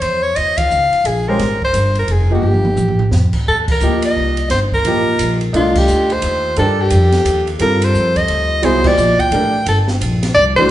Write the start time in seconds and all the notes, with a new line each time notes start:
0.01 E2 C5, ride
0.23 C#5
0.36 D#2 D#5, ride
0.58 F5, kick, ride
0.70 C#2, hi-hat pedal
0.93 muted upright bass stroke, ride
1.04 A#1 G#4, ride
1.28 G#3 C#4 G4 A#4 C5
1.39 G#1, snare, ride
1.61 C5, kick
1.73 G1, hi-hat pedal, ride
1.95 A#4, ride
2.07 F1, ride
2.11 G#4
2.30 F3 A#3 D#4 G4
2.35 G4
2.42 G1, high tom
2.54 mid tom
2.65 mid tom
2.76 A#1, floor tom, hi-hat pedal
2.88 floor tom
2.99 floor tom
3.11 F2, snare
3.33 muted upright bass stroke, kick, crash
3.47 D#2 A4
3.68 A#4, kick, crash
3.80 D2 F3 A#3 D#4 G4, hi-hat pedal
4.02 D#5, ride
4.16 C2
4.37 ride
4.50 G1 C5, snare, ride
4.72 A#4, kick
4.85 A1 F3 A#3 D#4 G4, ride
5.19 A#1, hi-hat pedal, ride
5.41 ride
5.53 C2 A3 D4 D#4 F4, ride
5.75 G4, kick, crash
5.88 D2, hi-hat pedal
6.10 C5, ride
6.22 D#2, ride
6.56 G2 D4 G4 A4 A#4, ride
6.82 G4
6.90 F2, hi-hat pedal, ride
7.12 snare, ride
7.25 D#2, hi-hat pedal, ride
7.47 ride
7.59 G2 G3 C4 F4 A4 A#4, ride
7.82 C5, ride
7.94 F2, hi-hat pedal
8.16 D#5, kick, ride
8.28 D2, ride
8.62 C2 F#3 B3 E4 G#4 C5, ride
8.83 F3 A#3 D#4 G4 D5, kick, crash
8.97 A#1, hi-hat pedal
9.19 G5, muted upright bass stroke, kick, ride
9.31 A1 A3 D4 G4 A#4, ride
9.66 G1 A4, ride
9.88 snare
10.01 A#1, hi-hat pedal, ride
10.23 snare, ride
10.35 C2 D5
10.56 E3 A3 D4 F#4 C5, kick